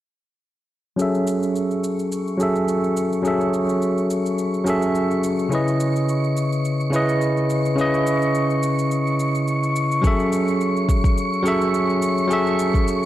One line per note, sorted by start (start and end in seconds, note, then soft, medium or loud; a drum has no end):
0.96 2.36 F#3 medium
0.96 2.37 C#4 medium
0.96 2.37 G#4 medium
0.96 13.05 C#6 medium
0.96 cabasa soft
1.00 2.38 A4 medium
1.00 2.39 E5 medium
1.15 cabasa soft
1.27 cabasa medium
1.43 cabasa soft
1.56 cabasa soft
1.71 cabasa soft
1.84 cabasa medium
1.99 cabasa soft
2.12 cabasa soft
2.28 cabasa soft
2.37 3.21 F#3 medium
2.37 3.21 C#4 medium
2.37 3.22 G#4 medium
2.37 3.23 A4 medium
2.37 cabasa medium
2.43 3.23 E5 medium
2.56 cabasa soft
2.68 cabasa soft
2.84 cabasa soft
2.97 cabasa medium
3.13 cabasa soft
3.22 4.62 F#3 medium
3.22 4.63 C#4 medium
3.22 4.63 G#4 medium
3.22 cabasa soft
3.26 4.64 A4 medium
3.26 4.65 E5 medium
3.41 cabasa soft
3.54 cabasa medium
3.69 cabasa soft
3.82 cabasa soft
3.98 cabasa soft
4.10 cabasa medium
4.26 cabasa soft
4.38 cabasa soft
4.54 cabasa soft
4.64 5.47 F#3 medium
4.64 5.48 C#4 medium
4.64 5.49 G#4 medium
4.64 cabasa medium
4.68 5.49 A4 medium
4.68 5.50 E5 medium
4.82 cabasa soft
4.95 cabasa soft
5.11 cabasa soft
5.23 cabasa medium
5.39 cabasa soft
5.49 6.89 C#3 medium
5.49 6.89 C#4 medium
5.49 6.90 E4 medium
5.49 cabasa soft
5.53 6.91 B4 medium
5.53 6.91 D#5 medium
5.67 cabasa soft
5.80 cabasa medium
5.96 cabasa soft
6.08 cabasa soft
6.24 cabasa soft
6.36 cabasa medium
6.52 cabasa soft
6.65 cabasa soft
6.80 cabasa soft
6.90 7.74 C#3 medium
6.90 7.74 C#4 medium
6.90 7.75 E4 medium
6.90 cabasa medium
6.95 7.76 B4 medium
6.95 7.76 D#5 medium
7.09 cabasa soft
7.21 cabasa soft
7.37 cabasa soft
7.50 cabasa medium
7.65 cabasa soft
7.75 9.15 C#3 medium
7.75 9.16 C#4 medium
7.75 9.16 E4 medium
7.75 cabasa soft
7.79 9.17 B4 medium
7.79 9.18 D#5 medium
7.94 cabasa soft
8.06 cabasa medium
8.22 cabasa soft
8.35 cabasa soft
8.50 cabasa soft
8.63 cabasa medium
8.79 cabasa soft
8.91 cabasa soft
9.07 cabasa soft
9.19 cabasa medium
9.35 cabasa soft
9.48 cabasa soft
9.63 cabasa soft
9.76 cabasa medium
9.92 cabasa soft
10.02 11.41 F#3 medium
10.02 11.42 C#4 medium
10.02 11.43 G#4 medium
10.02 11.43 A4 medium
10.02 kick loud
10.02 cabasa soft
10.07 11.44 E5 medium
10.20 cabasa soft
10.33 cabasa medium
10.48 cabasa soft
10.61 cabasa soft
10.77 cabasa soft
10.89 kick medium
10.89 cabasa medium
11.04 kick loud
11.04 cabasa soft
11.18 cabasa soft
11.34 cabasa soft
11.43 12.26 F#3 medium
11.43 12.27 C#4 medium
11.43 12.28 G#4 medium
11.43 12.28 A4 medium
11.43 cabasa medium
11.48 12.29 E5 medium
11.62 cabasa soft
11.75 cabasa soft
11.90 cabasa soft
12.02 cabasa medium
12.18 cabasa soft
12.28 13.05 F#3 medium
12.28 13.05 C#4 medium
12.28 13.05 G#4 medium
12.28 cabasa soft
12.32 13.05 A4 medium
12.32 13.05 E5 medium
12.47 cabasa soft
12.59 cabasa medium
12.74 kick medium
12.74 cabasa soft
12.88 cabasa soft